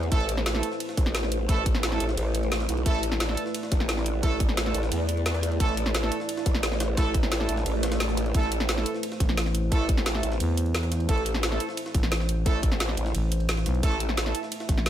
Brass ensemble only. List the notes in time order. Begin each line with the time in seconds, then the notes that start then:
0.12 A3 E4 A4
0.54 A3 E4 A4
1.49 A3 E4 A4
1.92 A3 E4 A4
2.86 A3 E4 A4
3.29 A3 E4 A4
4.23 A3 E4 A4
4.66 A3 E4 A4
5.60 A3 E4 A4
6.03 A3 E4 A4
6.97 A3 E4 A4
7.40 A3 E4 A4
8.35 A3 E4 A4
8.77 A3 E4 A4
9.72 A3 E4 A4
10.15 A3 E4 A4
11.09 A3 E4 A4
11.52 A3 E4 A4
12.46 A3 E4 A4
13.83 A3 E4 A4
14.26 A3 E4 A4